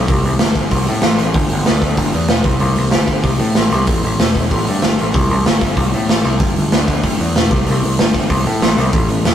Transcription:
0.08 0.24 C2 medium
0.08 kick loud
0.08 open hi-hat medium
0.24 0.40 C2 medium
0.24 open hi-hat medium
0.39 0.71 G1 medium
0.39 snare loud
0.39 open hi-hat medium
0.55 kick medium
0.55 open hi-hat medium
0.71 0.87 C2 medium
0.71 kick medium
0.71 open hi-hat medium
0.87 1.04 A2 medium
0.87 open hi-hat medium
1.01 1.19 A1 medium
1.01 snare loud
1.01 open hi-hat medium
1.18 1.34 A1 medium
1.18 open hi-hat medium
1.34 1.50 G1 loud
1.34 kick loud
1.34 open hi-hat medium
1.50 1.67 G1 medium
1.50 open hi-hat medium
1.66 1.97 D2 medium
1.66 snare loud
1.66 open hi-hat medium
1.82 kick medium
1.82 open hi-hat medium
1.97 2.13 G1 medium
1.97 kick medium
1.97 open hi-hat medium
2.12 2.29 E2 medium
2.12 open hi-hat medium
2.28 2.44 E1 medium
2.28 snare loud
2.28 open hi-hat medium
2.44 2.60 C2 medium
2.44 kick loud
2.44 open hi-hat medium
2.59 2.76 C2 medium
2.59 open hi-hat medium
2.76 2.93 C2 medium
2.76 open hi-hat medium
2.91 3.23 G1 medium
2.91 snare loud
2.91 open hi-hat medium
3.08 kick medium
3.08 open hi-hat soft
3.24 3.39 C2 medium
3.24 kick loud
3.24 open hi-hat medium
3.39 3.55 A2 medium
3.39 open hi-hat medium
3.55 3.71 A1 medium
3.55 snare loud
3.55 open hi-hat medium
3.72 3.87 C2 medium
3.72 open hi-hat medium
3.87 4.03 A1 medium
3.87 kick loud
3.87 open hi-hat medium
4.03 4.19 A1 medium
4.03 open hi-hat medium
4.19 4.50 E1 medium
4.19 snare loud
4.19 open hi-hat medium
4.35 kick medium
4.35 open hi-hat medium
4.51 4.66 A1 loud
4.51 kick loud
4.51 open hi-hat medium
4.67 4.82 G2 medium
4.67 open hi-hat medium
4.82 4.98 G1 medium
4.82 snare loud
4.82 open hi-hat medium
4.99 5.14 A1 medium
4.99 open hi-hat medium
5.14 5.29 C2 medium
5.14 kick loud
5.14 open hi-hat medium
5.30 5.45 C2 medium
5.30 open hi-hat soft
5.46 5.76 G1 medium
5.46 snare loud
5.46 open hi-hat medium
5.61 kick medium
5.61 open hi-hat medium
5.77 5.92 C2 medium
5.77 kick loud
5.77 open hi-hat medium
5.93 6.09 A2 medium
5.93 open hi-hat medium
6.09 6.24 A1 medium
6.09 snare loud
6.09 open hi-hat medium
6.24 6.39 C2 medium
6.24 open hi-hat medium
6.40 6.55 G1 medium
6.40 kick loud
6.40 open hi-hat medium
6.56 6.72 G1 medium
6.56 open hi-hat medium
6.72 7.03 D2 medium
6.72 snare loud
6.72 open hi-hat medium
6.88 kick medium
6.88 open hi-hat medium
7.03 7.19 G1 medium
7.03 kick medium
7.03 open hi-hat medium
7.20 7.35 E2 medium
7.20 open hi-hat medium
7.36 7.51 E1 medium
7.36 snare loud
7.36 open hi-hat medium
7.51 7.66 C2 medium
7.51 kick loud
7.51 open hi-hat medium
7.67 7.83 C2 medium
7.67 open hi-hat medium
7.84 7.99 C2 medium
7.84 open hi-hat medium
7.99 8.29 G1 medium
7.99 snare loud
7.99 open hi-hat medium
8.15 kick medium
8.15 open hi-hat medium
8.30 8.45 C2 medium
8.30 kick loud
8.30 open hi-hat medium
8.46 8.61 A2 medium
8.46 open hi-hat medium
8.62 8.77 A1 medium
8.62 snare loud
8.62 open hi-hat medium
8.78 8.93 C2 medium
8.78 open hi-hat medium
8.93 9.08 A1 medium
8.93 kick loud
8.93 open hi-hat medium
9.09 9.25 A1 medium
9.09 open hi-hat medium
9.25 9.35 E1 medium
9.25 snare loud
9.25 open hi-hat medium

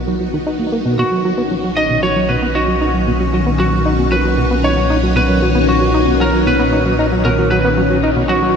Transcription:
0.00 0.96 B1 medium
0.00 8.56 D#3 medium
0.00 0.95 B3 medium
0.00 0.97 F#4 medium
0.00 8.56 F#4 medium
0.00 1.01 B4 medium
0.07 0.19 F#3 medium
0.21 0.28 F#3 medium
0.34 0.38 D#3 medium
0.47 0.58 D#4 medium
0.59 0.67 A#3 medium
0.72 0.80 A#3 medium
0.86 0.97 B2 loud
0.99 8.56 B1 medium
0.99 8.56 A#2 medium
0.99 1.03 B2 loud
0.99 8.56 C#4 medium
0.99 1.80 F#4 medium
0.99 5.19 F#5 medium
1.12 1.23 F#3 medium
1.25 1.33 F#3 loud
1.38 1.43 B3 medium
1.51 1.56 F#3 medium
1.64 1.72 F#3 medium
1.77 1.85 D#4 loud
1.77 2.02 D#5 loud
1.90 1.98 B2 medium
2.03 2.08 F#3 medium
2.03 2.30 C#5 medium
2.16 2.28 F#3 medium
2.29 2.37 B2 medium
2.29 2.56 B4 medium
2.42 2.47 B3 loud
2.55 2.63 D#4 medium
2.55 2.92 F#4 medium
2.68 2.76 F#3 medium
2.81 2.89 D#4 medium
2.94 3.06 F#3 medium
3.08 3.12 B2 medium
3.20 3.32 F#3 medium
3.34 3.41 F#3 medium
3.46 3.51 B3 loud
3.60 3.64 F#3 medium
3.60 4.13 F#4 medium
3.73 3.80 F#3 medium
3.86 3.93 D#4 medium
3.99 4.06 B2 medium
4.12 4.16 F#3 loud
4.12 4.60 B4 medium
4.25 4.37 F#3 medium
4.38 4.46 B2 medium
4.51 4.56 B3 medium
4.64 4.72 D#4 medium
4.64 5.01 C#5 loud
4.77 4.85 F#3 medium
4.90 4.98 D#4 loud
5.03 5.15 F#3 medium
5.16 5.21 B2 medium
5.16 5.70 B4 loud
5.16 8.56 C#5 medium
5.29 5.41 F#3 medium
5.42 5.50 F#3 loud
5.55 5.60 B3 loud
5.68 5.73 F#3 medium
5.68 6.22 F#4 medium
5.81 5.89 F#3 medium
5.94 6.02 D#4 loud
6.08 6.15 B2 medium
6.20 6.25 F#3 loud
6.20 6.47 A#4 medium
6.33 6.45 F#3 medium
6.46 6.54 B2 medium
6.46 6.95 B4 medium
6.59 6.64 B3 loud
6.73 6.80 D#4 medium
6.86 6.93 F#3 medium
6.99 7.07 D#4 loud
7.12 7.24 F#3 medium
7.25 7.30 B2 loud
7.25 7.50 A#4 loud
7.38 7.50 F#3 medium
7.51 7.59 F#3 loud
7.51 7.99 B4 loud
7.65 7.69 B3 loud
7.77 7.82 F#3 medium
7.90 7.98 F#3 medium
8.03 8.11 D#4 medium
8.16 8.24 B2 medium
8.29 8.34 F#3 loud
8.29 8.56 F#4 loud
8.42 8.54 F#3 medium

